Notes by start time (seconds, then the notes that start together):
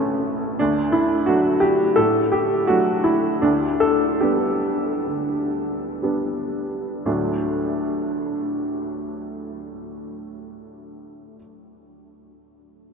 Already playing: A1 A3 C#4 A4
0.59 D2 D4
0.92 E4
1.26 F#3 A3 D4 F#4
1.60 G4
1.96 A2 A4
2.32 G4
2.67 F#3 A3 D4 F#4
3.04 E4
3.42 D2 D4
3.80 A4
4.21 G3 B3 D4 G4
5.07 D3
6.03 G3 B3 D4
7.06 D2 A2 F#3 A3 D4